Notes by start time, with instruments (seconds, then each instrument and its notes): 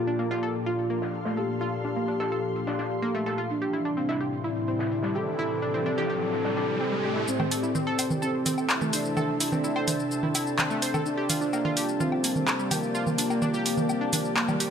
Already playing: analog synth pad A#2 F3 D4 F4 A4, ambient pad A#3 G4 D5 A5, analog synth lead F4
0.07 synth pluck D4
0.18 synth pluck A#3, ambient pad C6, closed hi-hat
0.24 ambient pad F5
0.31 synth pluck F4, snare
0.43 synth pluck A4
0.54 closed hi-hat
0.66 analog synth lead F4, synth pluck F4, closed hi-hat
0.78 closed hi-hat
0.90 synth pluck A#3, closed hi-hat
1.02 snare
1.13 closed hi-hat
1.25 synth pluck A3, snare
1.37 analog synth lead G4, synth pluck A4, closed hi-hat
1.61 synth pluck F4, closed hi-hat
1.84 synth pluck D4, closed hi-hat
1.96 synth pluck A#3
2.08 synth pluck D4, closed hi-hat
2.20 synth pluck A4, snare
2.32 synth pluck A4, closed hi-hat
2.56 closed hi-hat
2.67 synth pluck D4, snare
2.79 synth pluck D4, snare, closed hi-hat
2.91 closed hi-hat
3.02 synth pluck A#3, closed hi-hat
3.15 synth pluck A3
3.26 synth pluck A4, snare, closed hi-hat
3.38 synth pluck F4, closed hi-hat
3.49 ambient pad A2, analog synth pad C3 E3 G3 D4 E4, analog synth lead D4, closed hi-hat, riser
3.61 synth pluck G4, closed hi-hat
3.73 ambient pad C4, synth pluck E4, closed hi-hat
3.85 synth pluck D4
3.97 synth pluck C4, closed hi-hat
4.09 synth pluck E4, snare
4.20 synth pluck G4, ambient pad G4, closed hi-hat
4.31 ambient pad D5, closed hi-hat
4.44 synth pluck E4, analog synth lead E4, closed hi-hat
4.55 closed hi-hat
4.67 synth pluck C4, closed hi-hat
4.79 snare
4.92 closed hi-hat
5.03 synth pluck G3, snare
5.15 synth pluck G4, analog synth lead A4, closed hi-hat
5.39 synth pluck E4, closed hi-hat
5.62 synth pluck D4, closed hi-hat
5.74 synth pluck C4
5.86 synth pluck D4, closed hi-hat
5.98 synth pluck G4, snare
6.10 synth pluck G4, closed hi-hat
6.22 closed hi-hat
6.33 closed hi-hat
6.45 synth pluck D4, snare
6.57 synth pluck D4, snare, closed hi-hat
6.69 closed hi-hat
6.80 synth pluck C4
6.92 synth pluck G3
7.04 synth pluck G4
7.16 synth pluck E4
7.27 analog synth pad C3 E3 A3 E4 A4, synth drone C3 C4, analog synth lead C4, ambient pad A4, shaker
7.39 synth pluck C5, low conga, low woodblock
7.51 synth pluck A4, open hi-hat, shaker
7.63 synth pluck E4, shaker
7.75 synth pluck C4, low conga, shaker
7.83 synth pluck A4, ambient pad E5 A5
7.98 synth pluck C5, open hi-hat, low woodblock, shaker
8.11 low conga, shaker
8.22 analog synth lead C4, synth pluck A4, shaker
8.46 synth pluck C4, open hi-hat, low conga, shaker
8.58 low woodblock, shaker
8.70 clap, shaker
8.81 synth pluck A3, low conga, shaker
8.93 analog synth lead D4, synth pluck C5, open hi-hat, shaker
9.05 shaker
9.17 synth pluck A4, low conga, low woodblock, shaker
9.40 synth pluck E4, open hi-hat, shaker
9.52 synth pluck C4, low conga, shaker
9.64 synth pluck E4, shaker
9.76 synth pluck C5, low woodblock
9.88 synth pluck C5, open hi-hat, low conga, shaker
10.00 shaker
10.11 shaker
10.23 synth pluck E4, low conga
10.35 synth pluck E4, open hi-hat, low woodblock, shaker
10.47 shaker
10.58 synth pluck C4, clap, low conga, shaker
10.70 synth pluck A3, shaker
10.82 synth pluck C5, open hi-hat, shaker
10.94 synth pluck A4, low conga, low woodblock, shaker
11.06 analog synth pad F3 G3 D4 F4, ambient pad A#3, analog synth lead D4, shaker
11.17 synth pluck G4
11.26 synth pluck F4, ambient pad G4, open hi-hat, low conga, shaker
11.41 synth pluck D4, shaker
11.53 synth pluck A#3, low woodblock, shaker
11.62 synth pluck F4, ambient pad D5, low conga
11.77 synth pluck G4, open hi-hat, shaker
11.89 shaker
12.00 analog synth lead C4, synth pluck F4, low conga, shaker
12.12 low woodblock
12.24 synth pluck A#3, open hi-hat, shaker
12.36 low conga, shaker
12.48 clap, shaker
12.59 synth pluck G3, shaker
12.71 analog synth lead A#3, synth pluck G4, open hi-hat, low conga, low woodblock, shaker
12.83 shaker
12.95 analog synth pad C4, synth pluck F4, shaker
13.07 low conga, shaker
13.18 synth pluck D4, open hi-hat, shaker
13.30 synth pluck A#3, low woodblock, shaker
13.42 synth pluck D4, low conga, shaker
13.54 synth pluck G4, shaker
13.66 synth pluck G4, open hi-hat, shaker
13.77 low conga, shaker
13.89 low woodblock, shaker
14.01 synth pluck D4
14.13 synth pluck D4, open hi-hat, low conga, shaker
14.25 shaker
14.36 synth pluck A#3, clap, shaker
14.48 synth pluck G3, low conga, low woodblock, shaker
14.60 synth pluck G4, open hi-hat, shaker